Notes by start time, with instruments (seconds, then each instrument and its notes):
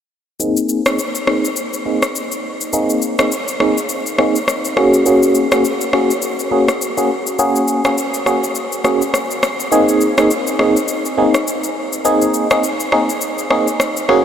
0.40 fm electric piano A#3 C4 D#4 G#4, shaker
0.57 shaker
0.69 shaker
0.86 fm electric piano A#3 C4 D#4 G#4, cross-stick, shaker
0.99 shaker
1.15 shaker
1.27 fm electric piano A#3 C4 D#4 G#4, cross-stick
1.45 shaker
1.56 shaker
1.73 shaker
1.85 fm electric piano A#3 C4 D#4 G#4
2.03 cross-stick, shaker
2.15 shaker
2.32 shaker
2.61 shaker
2.73 fm electric piano A#3 C4 D#4 G#4, shaker
2.90 shaker
3.02 shaker
3.19 fm electric piano A#3 C4 D#4 G#4, cross-stick, shaker
3.32 shaker
3.48 shaker
3.60 fm electric piano A#3 C4 D#4 G#4, cross-stick
3.78 shaker
3.89 shaker
4.06 shaker
4.18 fm electric piano A#3 C4 D#4 G#4, cross-stick
4.36 shaker
4.48 cross-stick, shaker
4.65 shaker
4.77 fm electric piano A#3 C#4 F#4 G#4, cross-stick
4.94 shaker
5.06 fm electric piano A#3 C#4 F#4 G#4, shaker
5.23 shaker
5.35 shaker
5.52 fm electric piano A#3 C#4 F#4 G#4, cross-stick, shaker
5.65 shaker
5.81 shaker
5.93 fm electric piano A#3 C#4 F#4 G#4, cross-stick
6.11 shaker
6.22 shaker
6.39 shaker
6.51 fm electric piano A#3 C#4 F#4 G#4
6.68 cross-stick, shaker
6.81 shaker
6.97 fm electric piano A#3 C#4 F#4 G#4, shaker
7.27 shaker
7.39 fm electric piano A#3 C#4 F#4 G#4, shaker
7.56 shaker
7.68 shaker
7.85 fm electric piano A#3 C#4 F#4 G#4, cross-stick, shaker
7.98 shaker
8.14 shaker
8.26 fm electric piano A#3 C#4 F#4 G#4, cross-stick, shaker
8.44 shaker
8.55 shaker
8.72 shaker
8.84 fm electric piano A#3 C#4 F#4 G#4, cross-stick, shaker
9.02 shaker
9.14 cross-stick, shaker
9.31 shaker
9.43 cross-stick, shaker
9.60 shaker
9.72 fm electric piano A#3 C4 D#4 G#4, shaker
9.89 shaker
10.01 shaker
10.18 fm electric piano A#3 C4 D#4 G#4, cross-stick, shaker
10.31 shaker
10.47 shaker
10.59 fm electric piano A#3 C4 D#4 G#4, cross-stick
10.77 shaker
10.88 shaker
11.05 shaker
11.17 fm electric piano A#3 C4 D#4 G#4
11.34 cross-stick, shaker
11.47 shaker
11.64 shaker
11.93 shaker
12.05 fm electric piano A#3 C4 D#4 G#4, shaker
12.22 shaker
12.34 shaker
12.51 fm electric piano A#3 C4 D#4 G#4, cross-stick, shaker
12.64 shaker
12.80 shaker
12.92 fm electric piano A#3 C4 D#4 G#4, cross-stick
13.10 shaker
13.21 shaker
13.38 shaker
13.50 fm electric piano A#3 C4 D#4 G#4, cross-stick
13.68 shaker
13.80 cross-stick, shaker
13.97 shaker
14.09 fm electric piano A#3 C#4 F#4 G#4, cross-stick